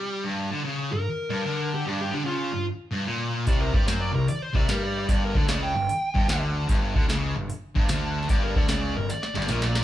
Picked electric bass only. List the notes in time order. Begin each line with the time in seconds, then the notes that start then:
3.47 C2
3.73 G2
3.88 F#2
4.14 C2
4.55 C2
4.68 G2
5.09 G1
5.35 D2
5.49 C#2
5.75 G1
6.15 G1
6.28 D2
6.69 G1
6.95 D2
7.09 C#2
7.36 G1
7.76 G1
7.90 D2
8.30 G1
8.56 D2
8.71 C#2
8.98 G1
9.36 G1
9.49 A#1